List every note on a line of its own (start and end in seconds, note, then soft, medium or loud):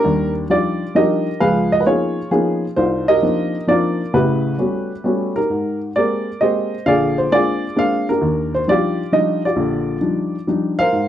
0.00 0.47 D4 medium
0.00 0.46 G4 medium
0.00 0.32 A#4 loud
0.04 0.44 D#2 medium
0.04 0.44 G3 medium
0.50 0.82 F3 soft
0.50 0.82 G3 soft
0.50 0.82 D4 soft
0.50 0.82 D#4 soft
0.50 1.23 F4 medium
0.50 0.96 G4 medium
0.50 0.93 D5 medium
0.95 1.27 F3 medium
0.95 1.28 G3 soft
0.95 1.27 D4 medium
0.95 1.28 D#4 medium
0.95 1.38 G4 medium
0.95 1.38 A#4 medium
0.95 1.42 D#5 loud
1.40 1.80 C#2 medium
1.40 1.80 F3 medium
1.40 1.86 G#4 medium
1.40 1.79 B4 medium
1.40 1.72 F5 loud
1.72 1.82 D#5 loud
1.81 1.85 B4 medium
1.85 2.18 F3 soft
1.85 2.18 A#3 soft
1.85 2.19 B3 soft
1.85 2.18 C#4 soft
1.85 2.19 D#4 medium
1.85 2.30 F4 medium
1.85 2.30 G#4 medium
1.85 2.29 C#5 medium
2.31 2.64 F3 medium
2.31 2.64 A#3 medium
2.31 2.64 B3 medium
2.31 2.64 C#4 medium
2.31 2.64 D#4 medium
2.31 2.74 F4 medium
2.31 2.67 G#4 medium
2.76 3.16 C2 medium
2.76 3.22 D#4 medium
2.76 3.50 F4 medium
2.76 3.09 C5 medium
3.08 3.64 G4 medium
3.08 3.64 A#4 medium
3.08 3.64 D#5 loud
3.22 3.55 F3 soft
3.22 3.55 A#3 soft
3.22 3.55 C4 soft
3.22 3.55 D4 soft
3.22 3.56 D#4 medium
3.67 4.00 F3 medium
3.67 4.00 A#3 medium
3.67 4.01 C4 medium
3.67 4.01 D4 medium
3.67 4.01 D#4 medium
3.67 4.11 F4 medium
3.67 4.11 A#4 medium
3.67 4.15 D5 medium
4.14 4.53 A1 medium
4.14 4.53 C#3 medium
4.14 5.32 E4 medium
4.14 5.32 G4 medium
4.14 5.31 B4 medium
4.58 4.91 G3 soft
4.58 4.91 A3 soft
4.58 4.91 B3 soft
4.58 4.91 C#4 soft
4.58 4.92 F#4 medium
5.04 5.37 G3 medium
5.04 5.37 A3 medium
5.04 5.37 B3 medium
5.04 5.37 C#4 medium
5.04 5.37 F#4 medium
5.36 5.92 D#4 soft
5.36 5.92 G4 soft
5.36 5.78 A#4 medium
5.50 5.89 G#2 medium
5.96 6.28 G#3 soft
5.96 6.28 A#3 soft
5.96 6.28 C4 soft
5.96 6.28 G4 soft
5.96 6.69 A#4 medium
5.96 6.42 D5 medium
6.41 6.73 G#3 medium
6.41 6.73 A#3 medium
6.41 6.73 C4 soft
6.41 6.74 G4 medium
6.41 6.84 C5 medium
6.41 6.87 D#5 medium
6.86 7.26 A#1 medium
6.86 7.25 D3 medium
6.86 7.33 G#4 medium
6.86 7.31 D5 medium
6.86 7.18 F5 loud
7.18 7.32 C5 medium
7.31 7.64 G#3 soft
7.31 7.64 A#3 soft
7.31 7.64 C4 soft
7.31 7.64 D4 medium
7.31 8.05 F4 medium
7.31 8.05 G#4 medium
7.31 7.78 D5 loud
7.76 8.09 G#3 medium
7.76 8.09 A#3 medium
7.76 8.09 C4 soft
7.76 8.09 D4 medium
7.76 8.06 F5 loud
8.09 8.65 D4 medium
8.09 8.65 G4 medium
8.09 8.50 A#4 medium
8.21 8.61 D#2 medium
8.54 8.67 C5 medium
8.67 9.00 F3 medium
8.67 9.00 G3 soft
8.67 9.00 D4 soft
8.67 9.00 D#4 soft
8.67 9.41 F4 medium
8.67 9.41 G4 medium
8.67 9.15 D5 medium
9.12 9.45 F3 medium
9.12 9.45 G3 medium
9.12 9.45 D4 medium
9.12 9.45 D#4 medium
9.12 9.41 D#5 medium
9.45 10.46 F4 medium
9.45 10.46 G4 medium
9.45 10.45 D5 medium
9.56 9.96 A#1 medium
9.56 9.96 D3 medium
10.01 10.34 F3 soft
10.01 10.34 G3 soft
10.01 10.35 D4 soft
10.01 10.35 D#4 soft
10.47 10.80 F3 soft
10.47 10.80 G3 medium
10.47 10.80 D4 medium
10.47 10.81 D#4 medium
10.79 11.08 A#4 medium
10.79 11.08 C5 medium
10.79 11.08 F5 loud
10.93 11.08 G#2 medium